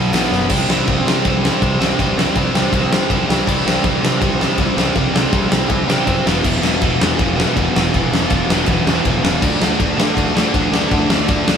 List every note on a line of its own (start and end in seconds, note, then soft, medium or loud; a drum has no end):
0.00 0.12 B2 medium
0.00 0.12 F#3 medium
0.00 0.11 B3 medium
0.13 0.28 B1 medium
0.13 0.49 B2 medium
0.13 0.49 F#3 medium
0.13 0.50 B3 medium
0.13 snare loud
0.13 open hi-hat medium
0.31 0.47 F#1 loud
0.31 snare medium
0.49 0.62 C2 loud
0.49 0.69 C3 medium
0.49 0.69 G3 loud
0.49 0.69 C4 loud
0.49 kick loud
0.49 crash loud
0.68 0.80 C2 medium
0.68 0.88 C3 medium
0.68 0.88 G3 loud
0.68 0.89 C4 medium
0.68 snare loud
0.87 1.00 C2 loud
0.87 1.06 C3 medium
0.87 1.07 G3 loud
0.87 1.08 C4 medium
0.87 kick loud
0.87 ride medium
1.05 1.17 C3 loud
1.05 1.25 C3 medium
1.05 1.25 G3 medium
1.05 1.26 C4 medium
1.05 snare loud
1.25 1.49 C2 loud
1.25 1.43 C3 loud
1.25 1.43 G3 loud
1.25 1.43 C4 medium
1.25 kick loud
1.25 ride medium
1.43 1.61 C3 medium
1.43 1.61 G3 medium
1.43 1.62 C4 medium
1.43 snare loud
1.61 1.74 C2 medium
1.61 1.80 C3 medium
1.61 1.80 G3 medium
1.61 1.80 C4 medium
1.61 kick loud
1.61 ride medium
1.80 1.92 C2 medium
1.80 1.99 C3 medium
1.80 2.00 G3 medium
1.80 2.01 C4 loud
1.80 snare loud
1.99 2.11 C2 loud
1.99 2.17 C3 loud
1.99 2.18 G3 loud
1.99 2.18 C4 loud
1.99 kick loud
1.99 ride medium
2.17 2.29 C2 medium
2.17 2.36 C3 medium
2.17 2.36 G3 medium
2.17 2.37 C4 medium
2.17 snare loud
2.35 2.48 C2 medium
2.35 2.55 C3 medium
2.35 2.56 G3 medium
2.35 2.56 C4 loud
2.35 kick loud
2.35 ride medium
2.55 2.67 C2 medium
2.55 2.73 C3 medium
2.55 2.73 G3 medium
2.55 2.73 C4 medium
2.55 snare loud
2.72 2.85 C2 medium
2.72 2.92 C3 medium
2.72 2.92 G3 loud
2.72 2.92 C4 medium
2.72 kick loud
2.72 ride medium
2.92 3.04 C3 medium
2.92 3.09 C3 medium
2.92 3.10 G3 loud
2.92 3.10 C4 medium
2.92 snare loud
3.10 3.22 C2 medium
3.10 3.28 C3 medium
3.10 3.29 G3 medium
3.10 3.29 C4 medium
3.10 kick loud
3.10 ride medium
3.28 3.41 C2 medium
3.28 3.48 C3 medium
3.28 3.48 G3 medium
3.28 3.48 C4 loud
3.28 snare loud
3.47 3.59 C2 loud
3.47 3.65 C3 loud
3.47 3.65 G3 loud
3.47 3.66 C4 loud
3.47 kick loud
3.47 crash loud
3.66 3.78 C2 medium
3.66 3.83 C3 medium
3.66 3.83 G3 medium
3.66 3.83 C4 medium
3.66 snare loud
3.83 3.96 C2 loud
3.83 4.01 C3 medium
3.83 4.03 G3 loud
3.83 4.03 C4 medium
3.83 kick loud
3.83 ride medium
4.01 4.14 C3 medium
4.01 4.19 C3 medium
4.01 4.20 G3 medium
4.01 4.20 C4 medium
4.01 snare loud
4.20 4.46 C2 medium
4.20 4.38 C3 medium
4.20 4.39 G3 loud
4.20 4.39 C4 loud
4.20 kick loud
4.20 ride medium
4.39 4.57 C3 medium
4.39 4.59 G3 medium
4.39 4.58 C4 medium
4.39 snare loud
4.58 4.70 C2 medium
4.58 4.75 C3 medium
4.58 4.77 G3 medium
4.58 4.76 C4 medium
4.58 kick loud
4.58 ride medium
4.77 4.89 C2 loud
4.77 4.93 C3 medium
4.77 4.95 G3 medium
4.77 4.95 C4 loud
4.77 snare loud
4.95 5.08 C2 medium
4.95 5.13 C3 loud
4.95 5.14 G3 loud
4.95 5.13 C4 loud
4.95 kick loud
4.95 ride medium
5.14 5.26 C2 medium
5.14 5.30 C3 medium
5.14 5.32 G3 medium
5.14 5.31 C4 loud
5.14 snare loud
5.31 5.45 C2 medium
5.31 5.48 C3 medium
5.31 5.50 G3 medium
5.31 5.50 C4 medium
5.31 kick loud
5.31 ride medium
5.49 5.64 C2 medium
5.49 5.67 C3 medium
5.49 5.68 G3 medium
5.49 5.68 C4 medium
5.49 snare loud
5.68 5.82 C2 loud
5.68 5.86 C3 loud
5.68 5.87 G3 loud
5.68 5.87 C4 loud
5.68 kick loud
5.68 ride medium
5.87 6.05 C3 medium
5.87 6.01 C3 medium
5.87 6.07 G3 medium
5.87 6.06 C4 loud
5.87 snare loud
6.06 6.20 F#2 medium
6.06 6.24 C3 medium
6.06 6.26 G3 medium
6.06 6.25 C4 loud
6.06 kick loud
6.06 ride medium
6.25 6.39 E1 loud
6.25 6.44 E2 loud
6.25 6.43 B2 medium
6.25 6.44 E3 loud
6.25 snare loud
6.44 6.57 E1 loud
6.44 6.61 E2 medium
6.44 6.62 B2 loud
6.44 6.63 E3 loud
6.44 kick loud
6.44 crash loud
6.62 6.75 E1 medium
6.62 6.80 E2 medium
6.62 6.80 B2 medium
6.62 6.81 E3 medium
6.62 snare loud
6.80 6.94 E1 loud
6.80 7.00 E2 medium
6.80 7.00 B2 medium
6.80 7.01 E3 loud
6.80 kick loud
6.80 ride medium
7.00 7.13 E2 loud
7.00 7.17 E2 medium
7.00 7.17 B2 medium
7.00 7.17 E3 loud
7.00 snare loud
7.18 7.44 E1 medium
7.18 7.36 E2 medium
7.18 7.36 B2 loud
7.18 7.36 E3 loud
7.18 kick loud
7.18 ride medium
7.37 7.54 E2 medium
7.37 7.55 B2 medium
7.37 7.55 E3 loud
7.37 snare loud
7.55 7.68 E1 medium
7.55 7.73 E2 medium
7.55 7.74 B2 medium
7.55 7.75 E3 medium
7.55 kick loud
7.55 ride medium
7.75 7.87 E1 loud
7.75 7.93 E2 medium
7.75 7.93 B2 medium
7.75 7.94 E3 loud
7.75 snare loud
7.94 8.06 E1 loud
7.94 8.12 E2 loud
7.94 8.12 B2 loud
7.94 8.13 E3 loud
7.94 kick loud
7.94 ride medium
8.12 8.24 E1 medium
8.12 8.28 E2 loud
8.12 8.29 B2 loud
8.12 8.30 E3 loud
8.12 snare loud
8.29 8.43 E1 loud
8.29 8.48 E2 medium
8.29 8.49 B2 medium
8.29 8.50 E3 medium
8.29 kick loud
8.29 ride medium
8.50 8.62 E1 medium
8.50 8.66 E2 medium
8.50 8.67 B2 medium
8.50 8.67 E3 loud
8.50 snare loud
8.66 8.80 E1 loud
8.66 8.85 E2 loud
8.66 8.85 B2 medium
8.66 8.86 E3 loud
8.66 kick loud
8.66 ride medium
8.86 9.03 E2 medium
8.86 8.99 E2 medium
8.86 9.04 B2 medium
8.86 9.04 E3 medium
8.86 snare loud
9.04 9.18 E1 medium
9.04 9.22 E2 medium
9.04 9.23 B2 medium
9.04 9.23 E3 loud
9.04 kick loud
9.04 ride medium
9.23 9.37 E1 medium
9.23 9.41 E2 medium
9.23 9.41 B2 medium
9.23 9.42 E3 loud
9.23 snare loud
9.42 9.55 D2 loud
9.42 9.60 D3 medium
9.42 9.61 A3 loud
9.42 9.61 D4 loud
9.42 kick loud
9.42 crash loud
9.60 9.74 D2 loud
9.60 9.78 D3 medium
9.60 9.79 A3 loud
9.60 9.79 D4 loud
9.60 snare loud
9.79 9.92 D2 medium
9.79 9.97 D3 medium
9.79 9.98 A3 loud
9.79 9.98 D4 loud
9.79 kick loud
9.79 ride medium
9.97 10.15 D3 medium
9.97 10.10 D3 loud
9.97 10.15 A3 medium
9.97 10.16 D4 loud
9.97 snare loud
10.16 10.42 D2 medium
10.16 10.34 D3 loud
10.16 10.34 A3 loud
10.16 10.35 D4 loud
10.16 kick loud
10.16 ride medium
10.34 10.53 D3 medium
10.34 10.54 A3 medium
10.34 10.55 D4 medium
10.34 snare loud
10.54 10.66 D2 loud
10.54 10.72 D3 medium
10.54 10.72 A3 medium
10.54 10.73 D4 medium
10.54 kick loud
10.54 ride medium
10.72 10.85 D2 medium
10.72 10.90 D3 medium
10.72 10.91 A3 medium
10.72 10.91 D4 loud
10.72 snare loud
10.91 11.04 D2 medium
10.91 11.09 D3 loud
10.91 11.09 A3 loud
10.91 11.09 D4 loud
10.91 kick loud
10.91 ride medium
11.10 11.22 D2 medium
11.10 11.28 D3 medium
11.10 11.28 A3 medium
11.10 11.29 D4 loud
11.10 snare loud
11.28 11.41 D2 loud
11.28 11.46 D3 medium
11.28 11.47 A3 medium
11.28 11.47 D4 loud
11.28 kick loud
11.28 ride medium
11.47 11.57 D2 medium
11.47 11.57 D3 medium
11.47 11.57 A3 medium
11.47 11.57 D4 medium
11.47 snare loud